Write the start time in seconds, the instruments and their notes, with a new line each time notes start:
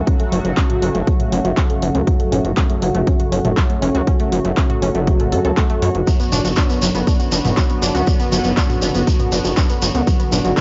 Already playing: synth drone F#2, analog synth pad C#3 F#3 A3 F#4
0.07 synth pluck C#4, kick, closed hi-hat
0.20 synth pluck A3, closed hi-hat
0.32 analog synth bass F#1, synth pluck F#3, open hi-hat
0.45 analog synth bass F#1, synth pluck A3, closed hi-hat
0.57 synth pluck C#4, kick, clap, closed hi-hat
0.70 synth pluck F#4, closed hi-hat, mid tom
0.82 analog synth bass F#1, synth pluck C#4, open hi-hat
0.95 analog synth bass F#1, synth pluck A3, closed hi-hat
1.07 synth pluck F#3, kick, closed hi-hat
1.20 synth pluck A3, closed hi-hat, mid tom
1.32 analog synth bass F#1, synth pluck C#4, open hi-hat
1.45 analog synth bass F#1, synth pluck F#4, closed hi-hat
1.57 synth pluck C#4, kick, clap, closed hi-hat
1.70 synth pluck A3, closed hi-hat
1.82 analog synth bass F#1, synth pluck F#3, open hi-hat
1.95 analog synth bass C#2, synth pluck A3, closed hi-hat
2.07 synth pluck F#3, kick, closed hi-hat
2.20 synth pluck A3, closed hi-hat
2.32 analog synth bass F#1, synth pluck C#4, mid tom, open hi-hat
2.45 analog synth bass F#1, synth pluck F#4, closed hi-hat
2.57 synth pluck C#4, kick, clap, closed hi-hat
2.70 synth pluck A3, closed hi-hat
2.82 analog synth bass F#1, synth pluck F#3, open hi-hat
2.95 analog synth bass F#1, synth pluck A3, closed hi-hat
3.07 synth pluck C#4, kick, closed hi-hat
3.20 synth pluck F#4, closed hi-hat
3.32 analog synth bass F#1, synth pluck C#4, open hi-hat
3.45 analog synth bass F#1, synth pluck A3, closed hi-hat, mid tom
3.57 synth pluck F#3, kick, clap, closed hi-hat
3.70 synth pluck A3, closed hi-hat
3.82 analog synth bass F#1, synth pluck C#4, open hi-hat
3.95 analog synth bass C#2, synth pluck F#4, closed hi-hat
4.07 synth pluck C#4, kick, closed hi-hat
4.20 synth pluck A3, closed hi-hat
4.32 analog synth bass F#1, synth pluck F#3, open hi-hat
4.45 analog synth bass F#1, synth pluck A3, closed hi-hat
4.57 synth pluck C#4, kick, clap, open hi-hat
4.70 synth pluck F#4, closed hi-hat, mid tom
4.82 analog synth bass F#1, synth pluck C#4, open hi-hat
4.95 analog synth bass F#1, synth pluck A3, closed hi-hat
5.07 synth pluck F#3, kick, closed hi-hat
5.20 synth pluck A3, closed hi-hat, mid tom
5.32 analog synth bass F#2, synth pluck A4, open hi-hat
5.45 analog synth bass C#2, synth pluck A4, closed hi-hat
5.57 synth pluck A3, kick, clap, closed hi-hat
5.70 synth pluck A3, closed hi-hat
5.82 analog synth bass F#2, synth pluck C#5, open hi-hat
5.95 analog synth bass F#1, synth pluck F#3, closed hi-hat
6.07 analog synth pad D3 B3, synth pluck F#3, kick, closed hi-hat, shekere
6.20 synth pluck B3, closed hi-hat, shekere
6.32 analog synth bass F#1, synth pluck D4, mid tom, open hi-hat, shekere
6.45 analog synth bass F#1, synth pluck F#4, closed hi-hat, shekere
6.56 synth pluck D4, kick, clap, closed hi-hat, shekere
6.70 synth pluck B3, closed hi-hat, shekere
6.82 analog synth bass F#1, synth pluck F#3, open hi-hat, shekere
6.95 analog synth bass F#1, synth pluck B3, closed hi-hat, shekere
7.07 synth pluck D4, kick, closed hi-hat, shekere
7.20 synth pluck F#4, closed hi-hat, shekere
7.32 analog synth bass F#1, synth pluck D4, open hi-hat, shekere
7.45 analog synth bass F#1, synth pluck B3, closed hi-hat, mid tom, shekere
7.57 synth pluck F#3, kick, clap, closed hi-hat, shekere
7.70 synth pluck B3, closed hi-hat, shekere
7.82 analog synth bass F#1, synth pluck D4, open hi-hat, shekere
7.95 analog synth bass C#2, synth pluck F#4, closed hi-hat, shekere
8.07 synth pluck D4, kick, closed hi-hat, shekere
8.20 synth pluck B3, closed hi-hat, shekere
8.32 analog synth bass F#1, synth pluck F#3, open hi-hat, shekere
8.44 analog synth bass F#1, synth pluck B3, closed hi-hat, shekere
8.57 synth pluck D4, kick, clap, closed hi-hat, shekere
8.70 synth pluck F#4, closed hi-hat, mid tom, shekere
8.82 analog synth bass F#1, synth pluck D4, open hi-hat, shekere
8.95 analog synth bass F#1, synth pluck B3, closed hi-hat, shekere
9.07 synth pluck F#3, kick, closed hi-hat, shekere
9.19 synth pluck B3, closed hi-hat, mid tom, shekere
9.32 analog synth bass F#1, synth pluck D4, open hi-hat, shekere
9.45 analog synth bass F#1, synth pluck F#4, closed hi-hat, shekere
9.57 synth pluck D4, kick, clap, closed hi-hat, shekere
9.69 synth pluck B3, closed hi-hat, shekere
9.82 analog synth bass F#1, synth pluck F#3, open hi-hat, shekere
9.95 analog synth bass C#2, synth pluck B3, closed hi-hat, shekere
10.07 synth pluck F#3, kick, closed hi-hat, shekere
10.20 synth pluck B3, closed hi-hat, shekere
10.32 analog synth bass F#1, synth pluck D4, mid tom, open hi-hat, shekere
10.45 analog synth bass F#1, synth pluck F#4, closed hi-hat, shekere
10.57 synth pluck D4, kick, clap, closed hi-hat, shekere